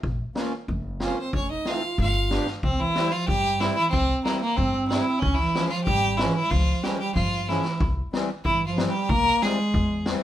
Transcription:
0.03 upright bass A#1, kick
0.35 accordion A#3 C#4 F4, snare
0.68 upright bass F#1, kick
1.00 accordion A#3 C#4 F4, clarinet C4, snare
1.04 violin C5
1.18 clarinet C4, violin C5
1.33 upright bass F1, clarinet C#4, violin C#5, kick
1.51 clarinet D#4, violin D#5
1.65 accordion A3 C4 F4, clarinet F4, violin F5, snare
1.75 clarinet D#4
1.83 clarinet F4
1.98 upright bass G1, clarinet F4, violin F5, kick, snare
2.30 accordion B3 D4 G4, snare
2.46 snare
2.63 upright bass C2, violin C4, clarinet C4, kick
2.80 clarinet E3, violin E4
2.94 accordion G3 C4 E4, snare
3.12 clarinet F3, violin F4
3.28 upright bass G2, clarinet G3, violin G4, kick
3.60 accordion G3 C4 E4, violin E4, snare
3.74 clarinet E3, violin E4
3.90 upright bass C2, violin C4, clarinet C4, kick
4.25 accordion G3 C4 E4, violin A#3, snare
4.40 violin A#3, clarinet A#3, snare
4.56 upright bass G2, violin C4, clarinet C4, kick
4.88 accordion G3 C4 E4, violin E4, snare
5.19 upright bass C#2, violin C#4, clarinet C#4, kick
5.35 violin E4
5.39 clarinet E3, snare
5.54 accordion F3 G#3 C#4, snare
5.68 violin F4
5.72 clarinet F3
5.84 upright bass G#1, clarinet G3, violin G4, kick
6.17 clarinet E3, accordion F3 G#3 C#4, violin E4, snare
6.35 violin E4
6.44 clarinet G3
6.50 upright bass C#2, clarinet F3, violin F4, kick
6.83 accordion F3 G#3 C#4, clarinet G3, violin G4, snare
6.98 clarinet G3, violin G4
7.15 upright bass G2, clarinet F3, violin F4, kick
7.41 clarinet F3
7.47 clarinet E3, accordion F3 G#3 C#4, violin E4, snare
7.65 snare
7.80 upright bass C2, kick
8.13 accordion E3 G3 C4, snare
8.44 upright bass G2, clarinet E3, violin E4, kick
8.66 clarinet F3, violin F4
8.76 accordion E3 G3 C4, snare
8.88 clarinet G3, violin G4
9.09 upright bass C2, clarinet A#3, violin A#4, kick
9.26 snare
9.42 accordion E3 G3 C4, clarinet G#3, violin G#4, snare
9.74 upright bass E2, kick
10.06 accordion E3 G3 C4, snare

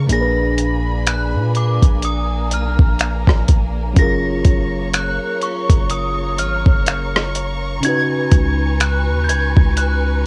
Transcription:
0.07 808-style bass A#1, fm electric piano A#2 A#3 D4, string section A#3 D4 G#5 B5, closed hi-hat
0.12 fm electric piano G#4 A#4, synth bell A#6
0.21 fm electric piano B4
0.58 closed hi-hat
1.07 synth bell F#6, finger snap, closed hi-hat
1.34 808-style bass A#2
1.55 synth bell D6, closed hi-hat
1.82 808-style bass A#1, kick, closed hi-hat
2.02 string section A#5, synth bell D#6, closed hi-hat
2.51 808-style bass B1, synth bell F6, closed hi-hat
2.79 808-style bass A#1, kick
2.99 finger snap, closed hi-hat
3.27 808-style bass A#1, kick, cross-stick
3.48 808-style bass A#1, kick, closed hi-hat
3.93 808-style bass F#1, fm electric piano F#3 C#4 F4, string section C#5 A#5 C#6, kick, closed hi-hat
3.99 fm electric piano G#4 A#4, synth bell A#6
4.45 808-style bass F#1, kick, closed hi-hat
4.93 synth bell F#6, finger snap, closed hi-hat
5.41 synth bell C#6, closed hi-hat
5.70 808-style bass F#1, kick, closed hi-hat
5.90 synth bell D#6, closed hi-hat
6.38 808-style bass G#1, synth bell F6, closed hi-hat
6.66 808-style bass F#1, kick
6.86 finger snap, closed hi-hat
7.16 cross-stick
7.35 closed hi-hat
7.81 fm electric piano C#3 C#4, string section B4 G#5, closed hi-hat
7.85 fm electric piano D#4 F#4 B4, synth bell G#6
8.32 808-style bass C#2, kick, closed hi-hat
8.80 synth bell F#6, finger snap, closed hi-hat
9.08 808-style bass D#2
9.24 synth bell G6
9.28 808-style bass C#2, synth bell G#6, closed hi-hat
9.57 808-style bass C#2, kick
9.77 synth bell F#6, closed hi-hat

